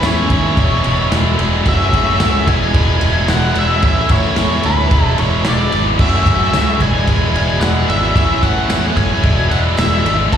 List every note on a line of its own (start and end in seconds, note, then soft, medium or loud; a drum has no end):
0.00 0.26 E2 medium
0.00 0.29 A2 loud
0.00 0.30 E3 loud
0.00 0.30 A3 medium
0.00 0.56 C#4 medium
0.00 0.31 C#4 medium
0.00 0.56 E4 medium
0.00 0.56 A4 medium
0.00 snare loud
0.00 ride loud
0.00 tambourine medium
0.04 0.32 E4 loud
0.04 1.08 C#5 medium
0.30 0.53 D#2 loud
0.30 0.56 A2 medium
0.30 0.57 E3 medium
0.30 0.56 A3 medium
0.30 0.56 C#4 loud
0.30 0.59 E4 loud
0.30 kick medium
0.30 ride medium
0.56 0.80 E1 medium
0.56 0.82 E2 loud
0.56 0.83 B2 medium
0.56 1.64 E3 medium
0.56 0.84 E3 loud
0.56 0.84 G#3 loud
0.56 1.64 D4 medium
0.56 0.84 D4 loud
0.56 0.85 E4 loud
0.56 1.64 F#4 medium
0.56 1.63 G#4 medium
0.56 2.44 E5 loud
0.56 kick loud
0.56 ride loud
0.83 1.08 E1 loud
0.83 1.09 E2 loud
0.83 1.09 B2 medium
0.83 1.11 E3 loud
0.83 1.11 G#3 medium
0.83 1.11 D4 loud
0.83 1.13 E4 loud
0.83 ride medium
1.10 1.35 E1 medium
1.10 1.37 E2 medium
1.10 1.37 B2 medium
1.10 1.39 E3 medium
1.10 1.39 G#3 medium
1.10 1.39 D4 medium
1.10 1.40 E4 medium
1.10 snare loud
1.10 ride loud
1.10 tambourine medium
1.38 1.62 E1 medium
1.38 1.64 E2 medium
1.38 1.64 B2 medium
1.38 1.65 E3 medium
1.38 1.65 G#3 medium
1.38 1.65 D4 medium
1.38 1.67 E4 medium
1.38 ride medium
1.64 1.89 F#1 loud
1.64 1.91 F#2 medium
1.64 1.92 C#3 loud
1.64 2.46 F#3 medium
1.64 1.92 F#3 loud
1.64 1.93 A3 loud
1.64 2.46 C#4 medium
1.64 1.94 C#4 loud
1.64 1.94 F#4 medium
1.64 3.80 G#4 medium
1.64 2.46 A4 medium
1.64 kick loud
1.64 ride loud
1.69 2.51 E5 loud
1.80 snare soft
1.93 2.16 F#1 medium
1.93 2.18 F#2 medium
1.93 2.19 C#3 medium
1.93 2.20 F#3 loud
1.93 2.20 A3 loud
1.93 2.20 C#4 medium
1.93 2.21 F#4 medium
1.93 kick medium
1.93 ride medium
2.19 2.44 C#2 medium
2.19 2.45 F#2 medium
2.19 2.45 C#3 medium
2.19 2.46 F#3 medium
2.19 2.46 A3 medium
2.19 2.46 C#4 loud
2.19 2.47 F#4 loud
2.19 snare loud
2.19 ride loud
2.19 tambourine medium
2.46 2.70 E1 medium
2.46 2.73 E2 medium
2.46 2.74 B2 loud
2.46 2.75 E3 loud
2.46 3.82 E3 medium
2.46 2.75 G#3 loud
2.46 2.75 D4 loud
2.46 5.96 E4 medium
2.46 2.77 E4 loud
2.46 3.82 F#4 medium
2.46 3.82 D5 loud
2.46 3.29 G#5 loud
2.46 kick medium
2.46 ride medium
2.74 2.97 E1 medium
2.74 3.00 E2 loud
2.74 3.01 B2 loud
2.74 3.02 E3 loud
2.74 3.02 G#3 loud
2.74 3.02 D4 loud
2.74 3.04 E4 loud
2.74 kick loud
2.74 ride loud
3.01 3.25 E1 loud
3.01 3.27 E2 medium
3.01 3.28 B2 medium
3.01 3.29 E3 medium
3.01 3.29 G#3 loud
3.01 3.29 D4 medium
3.01 3.30 E4 loud
3.01 ride medium
3.28 3.52 E1 loud
3.28 3.54 E2 medium
3.28 3.55 B2 medium
3.28 3.56 E3 medium
3.28 3.56 G#3 medium
3.28 3.56 D4 medium
3.28 3.58 E4 medium
3.28 3.57 F#5 loud
3.28 snare loud
3.28 ride loud
3.28 tambourine medium
3.55 3.79 E1 medium
3.55 3.81 E2 medium
3.55 3.81 B2 medium
3.55 3.83 E3 medium
3.55 3.82 G#3 medium
3.55 3.82 D4 loud
3.55 3.84 E4 medium
3.55 3.82 E5 loud
3.55 ride medium
3.82 4.06 A1 loud
3.82 4.08 A2 medium
3.82 4.10 E3 medium
3.82 4.09 A3 loud
3.82 4.10 C#4 loud
3.82 4.11 E4 loud
3.82 4.91 A4 medium
3.82 4.91 C#5 medium
3.82 4.11 E5 loud
3.82 kick loud
3.82 ride loud
4.09 4.33 A1 loud
4.09 4.34 A2 medium
4.09 4.35 E3 medium
4.09 4.36 A3 medium
4.09 4.36 C#4 medium
4.09 4.37 E4 loud
4.09 4.66 C#5 loud
4.09 kick loud
4.09 ride medium
4.35 4.60 E2 loud
4.35 4.62 A2 medium
4.35 4.63 E3 loud
4.35 4.63 A3 loud
4.35 4.64 C#4 medium
4.35 4.65 E4 loud
4.35 snare loud
4.35 ride loud
4.35 tambourine medium
4.63 4.87 D2 loud
4.63 4.89 A2 loud
4.63 4.91 E3 loud
4.63 4.89 A3 medium
4.63 4.90 C#4 medium
4.63 4.92 E4 loud
4.63 5.15 B4 loud
4.63 ride medium
4.90 5.14 E1 loud
4.90 5.15 E2 medium
4.90 5.16 B2 loud
4.90 5.17 E3 loud
4.90 5.99 E3 medium
4.90 5.17 G#3 loud
4.90 5.18 D4 loud
4.90 5.19 E4 loud
4.90 8.13 F#4 medium
4.90 8.14 G#4 medium
4.90 5.99 D5 loud
4.90 kick loud
4.90 ride loud
5.17 5.42 E1 loud
5.17 5.42 E2 medium
5.17 5.43 B2 loud
5.17 5.44 E3 medium
5.17 5.44 G#3 loud
5.17 5.45 D4 medium
5.17 5.46 E4 loud
5.17 5.46 C#5 loud
5.17 ride medium
5.44 5.68 E1 medium
5.44 5.70 E2 medium
5.44 5.70 B2 medium
5.44 5.72 E3 medium
5.44 5.72 G#3 medium
5.44 5.72 D4 medium
5.44 5.74 E4 medium
5.44 5.84 D5 medium
5.44 snare loud
5.44 ride loud
5.44 tambourine medium
5.71 5.95 G#1 medium
5.71 5.97 E2 medium
5.71 5.97 B2 medium
5.71 5.99 E3 medium
5.71 5.98 G#3 medium
5.71 5.98 D4 medium
5.71 6.00 E4 medium
5.71 ride medium
5.98 6.22 F#1 medium
5.98 6.24 F#2 loud
5.98 6.25 C#3 medium
5.98 6.25 F#3 loud
5.98 6.80 F#3 medium
5.98 6.26 A3 loud
5.98 6.27 C#4 loud
5.98 6.27 F#4 medium
5.98 6.81 A4 medium
5.98 6.83 E5 loud
5.98 6.81 E5 medium
5.98 kick loud
5.98 crash loud
6.13 snare soft
6.26 6.49 F#1 medium
6.26 6.51 F#2 medium
6.26 6.52 C#3 medium
6.26 6.52 F#3 medium
6.26 6.53 A3 medium
6.26 6.53 C#4 loud
6.26 6.54 F#4 medium
6.26 kick medium
6.26 ride medium
6.52 6.76 C#2 medium
6.52 6.78 F#2 medium
6.52 6.78 C#3 medium
6.52 6.79 F#3 medium
6.52 6.79 A3 loud
6.52 6.79 C#4 medium
6.52 6.80 F#4 loud
6.52 snare loud
6.52 ride loud
6.52 tambourine loud
6.80 7.03 E1 medium
6.80 7.06 E2 loud
6.80 7.06 B2 loud
6.80 7.07 E3 loud
6.80 8.15 E3 medium
6.80 7.07 G#3 loud
6.80 7.07 D4 loud
6.80 10.29 E4 medium
6.80 7.09 E4 loud
6.80 8.15 D5 loud
6.80 7.61 G#5 loud
6.80 kick medium
6.80 ride medium
7.07 7.30 E1 loud
7.07 7.33 E2 loud
7.07 7.33 B2 medium
7.07 7.35 E3 loud
7.07 7.35 G#3 loud
7.07 7.35 D4 loud
7.07 7.36 E4 loud
7.07 kick loud
7.07 ride loud
7.34 7.57 E1 loud
7.34 7.59 E2 medium
7.34 7.60 B2 medium
7.34 7.61 E3 medium
7.34 7.61 G#3 medium
7.34 7.61 D4 medium
7.34 7.63 E4 loud
7.34 ride medium
7.60 7.84 E1 medium
7.60 7.86 E2 medium
7.60 7.87 B2 medium
7.60 7.89 E3 medium
7.60 7.88 G#3 medium
7.60 7.89 D4 medium
7.60 7.90 E4 medium
7.60 7.89 F#5 medium
7.60 snare loud
7.60 ride loud
7.60 tambourine medium
7.87 8.11 G#1 medium
7.87 8.13 E2 medium
7.87 8.14 B2 medium
7.87 8.15 E3 medium
7.87 8.14 G#3 medium
7.87 8.15 D4 medium
7.87 8.17 E4 medium
7.87 8.14 E5 loud
7.87 ride medium
8.15 8.38 A1 medium
8.15 8.40 A2 medium
8.15 8.42 E3 medium
8.15 8.42 A3 medium
8.15 8.42 C#4 loud
8.15 8.43 E4 medium
8.15 9.23 A4 medium
8.15 9.23 C#5 loud
8.15 8.43 E5 loud
8.15 kick loud
8.15 ride loud
8.41 8.66 A1 medium
8.41 8.67 A2 loud
8.41 8.69 E3 medium
8.41 8.68 A3 medium
8.41 8.68 C#4 medium
8.41 8.70 E4 medium
8.41 8.97 F#5 loud
8.41 kick medium
8.41 ride medium
8.68 8.92 E2 medium
8.68 8.93 A2 medium
8.68 8.95 E3 medium
8.68 8.95 A3 medium
8.68 8.95 C#4 medium
8.68 8.96 E4 loud
8.68 snare loud
8.68 ride loud
8.68 tambourine loud
8.95 9.19 F#1 loud
8.95 9.21 A2 medium
8.95 9.23 E3 medium
8.95 9.22 A3 loud
8.95 9.22 C#4 medium
8.95 9.25 E4 loud
8.95 9.51 G#5 loud
8.95 kick medium
8.95 ride medium
9.22 9.46 E1 medium
9.22 9.48 E2 loud
9.22 9.49 B2 loud
9.22 9.50 E3 loud
9.22 10.30 E3 medium
9.22 9.51 G#3 loud
9.22 9.50 D4 loud
9.22 9.52 E4 loud
9.22 10.37 F#4 medium
9.22 10.37 G#4 medium
9.22 10.31 D5 medium
9.22 kick loud
9.22 ride loud
9.50 9.74 E1 loud
9.50 9.75 E2 medium
9.50 9.76 B2 loud
9.50 9.78 E3 medium
9.50 9.77 G#3 loud
9.50 9.77 D4 medium
9.50 9.79 E4 loud
9.50 9.58 F#5 loud
9.50 ride medium
9.76 10.01 E1 medium
9.76 10.02 E2 medium
9.76 10.02 B2 medium
9.76 10.04 E3 medium
9.76 10.04 G#3 medium
9.76 10.05 D4 medium
9.76 10.06 E4 medium
9.76 10.16 E5 medium
9.76 snare loud
9.76 ride medium
9.76 tambourine medium
10.03 10.28 G#1 medium
10.03 10.29 E2 medium
10.03 10.30 B2 medium
10.03 10.31 E3 loud
10.03 10.30 G#3 medium
10.03 10.31 D4 medium
10.03 10.33 E4 medium
10.03 ride medium
10.30 10.37 F#1 loud
10.30 10.37 F#2 medium
10.30 10.37 C#3 medium
10.30 10.37 F#3 loud
10.30 10.37 F#3 medium
10.30 10.37 A3 medium
10.30 10.37 C#4 loud
10.30 10.37 F#4 loud
10.30 10.37 A4 medium
10.30 10.37 E5 loud
10.30 kick loud
10.30 ride loud